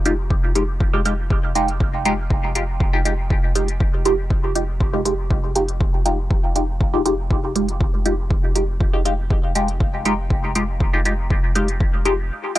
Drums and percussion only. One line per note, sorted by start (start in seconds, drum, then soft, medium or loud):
0.05 closed hi-hat medium
0.30 kick loud
0.55 closed hi-hat medium
0.80 kick loud
1.05 closed hi-hat medium
1.30 kick loud
1.55 closed hi-hat medium
1.68 closed hi-hat soft
1.80 kick loud
2.05 closed hi-hat medium
2.30 kick loud
2.55 closed hi-hat medium
2.80 kick loud
3.05 closed hi-hat medium
3.30 kick loud
3.55 closed hi-hat medium
3.68 closed hi-hat soft
3.80 kick loud
4.05 closed hi-hat medium
4.30 kick loud
4.55 closed hi-hat medium
4.80 kick loud
5.05 closed hi-hat medium
5.31 kick loud
5.55 closed hi-hat medium
5.68 closed hi-hat soft
5.81 kick loud
6.06 closed hi-hat medium
6.31 kick loud
6.56 closed hi-hat medium
6.81 kick loud
7.06 closed hi-hat medium
7.31 kick loud
7.56 closed hi-hat medium
7.68 closed hi-hat soft
7.81 kick loud
8.05 closed hi-hat medium
8.30 kick loud
8.55 closed hi-hat medium
8.80 kick loud
9.05 closed hi-hat medium
9.30 kick loud
9.55 closed hi-hat medium
9.68 closed hi-hat soft
9.80 kick loud
10.05 closed hi-hat medium
10.30 kick loud
10.55 closed hi-hat medium
10.80 kick loud
11.05 closed hi-hat medium
11.30 kick loud
11.55 closed hi-hat medium
11.68 closed hi-hat soft
11.80 kick loud
12.05 closed hi-hat medium
12.55 closed hi-hat medium